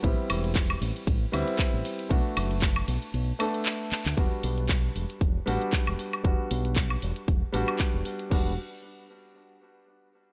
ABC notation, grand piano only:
X:1
M:4/4
L:1/8
Q:"Swing 16ths" 1/4=116
K:Em
V:1 name="Grand piano"
[G,B,CE]4- [G,B,CE] [G,B,CE]3 | [A,B,DF]4- [A,B,DF] [A,B,DA]3 | [G,B,DF]4- [G,B,DF] [G,B,DF]3 | [G,B,DF]4- [G,B,DF] [G,B,DF]3 |
[G,B,DF] z6 z |]